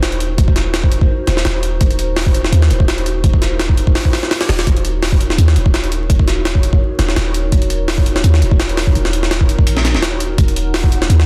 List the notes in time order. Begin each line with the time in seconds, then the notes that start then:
Already playing: D#1 D#4 F#4 A#4 C5
0.03 snare, closed hi-hat
0.12 closed hi-hat
0.20 closed hi-hat
0.38 D#1, kick, closed hi-hat
0.48 kick
0.56 snare, closed hi-hat
0.74 snare, closed hi-hat
0.84 kick
0.92 closed hi-hat
1.01 kick
1.27 D#1, snare, closed hi-hat
1.37 snare
1.45 D#1, snare, closed hi-hat
1.63 closed hi-hat
1.81 D#1, kick, closed hi-hat
1.91 closed hi-hat
1.99 closed hi-hat
2.17 snare, open hi-hat
2.26 kick
2.34 closed hi-hat
2.44 snare
2.52 D#2, closed hi-hat
2.62 snare
2.70 D#1, closed hi-hat
2.80 kick
2.88 snare, closed hi-hat
2.98 closed hi-hat
3.06 closed hi-hat
3.24 D#1, kick, closed hi-hat
3.34 kick
3.42 snare, closed hi-hat
3.60 snare, closed hi-hat
3.69 kick
3.78 closed hi-hat
3.87 kick
3.95 snare, open hi-hat
4.05 kick
4.13 snare, open hi-hat
4.23 snare
4.31 snare, open hi-hat
4.41 snare, open hi-hat
4.49 D#1, snare, open hi-hat
4.59 snare, open hi-hat
4.66 D#1 C#5, kick, closed hi-hat
4.76 closed hi-hat
4.85 closed hi-hat
5.03 snare, open hi-hat
5.12 kick
5.21 closed hi-hat
5.30 snare
5.38 D#2, closed hi-hat
5.48 snare
5.56 D#1, closed hi-hat
5.66 kick
5.74 snare, closed hi-hat
5.84 closed hi-hat
5.92 closed hi-hat
6.10 D#1, kick, closed hi-hat
6.19 kick
6.28 snare, closed hi-hat
6.45 snare, closed hi-hat
6.55 kick
6.63 closed hi-hat
6.73 kick
6.99 D#1, snare, closed hi-hat
7.09 snare
7.16 D#1, snare, closed hi-hat
7.34 closed hi-hat
7.52 D#1, kick, closed hi-hat
7.62 closed hi-hat
7.70 closed hi-hat
7.88 snare, open hi-hat
7.98 kick
8.06 closed hi-hat
8.16 snare
8.24 D#2, closed hi-hat
8.34 snare
8.42 D#1, closed hi-hat
8.51 kick
8.60 snare, closed hi-hat
8.69 closed hi-hat
8.77 snare, open hi-hat
8.87 kick
8.95 D#1, closed hi-hat
9.05 snare
9.13 closed hi-hat
9.23 snare
9.31 snare, closed hi-hat
9.41 kick
9.49 closed hi-hat
9.59 kick
9.67 A#1, closed hi-hat
9.77 snare
9.85 snare, closed hi-hat
9.94 D#1, snare
10.02 snare, closed hi-hat
10.20 closed hi-hat
10.38 D#1 F#5, kick, closed hi-hat
10.48 closed hi-hat
10.56 closed hi-hat
10.74 snare, open hi-hat
10.84 kick
10.92 closed hi-hat
11.02 snare
11.10 D#2, closed hi-hat
11.20 snare